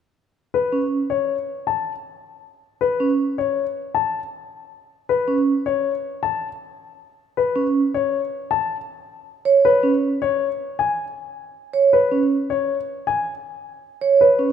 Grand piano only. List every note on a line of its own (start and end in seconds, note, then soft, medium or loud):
0.54 0.78 B4 soft
1.10 1.35 C#5 soft
1.67 1.92 A5 soft
2.81 3.06 B4 soft
3.38 3.63 C#5 soft
3.95 4.19 A5 soft
5.09 5.34 B4 soft
5.66 5.91 C#5 soft
6.23 6.47 A5 soft
7.37 7.62 B4 soft
7.94 8.19 C#5 soft
8.51 8.75 A5 soft
9.65 9.89 B4 medium
10.22 10.46 C#5 soft
10.79 11.03 G#5 soft
11.93 12.17 B4 soft
12.50 12.74 C#5 soft
13.07 13.31 G#5 soft
14.21 14.45 B4 soft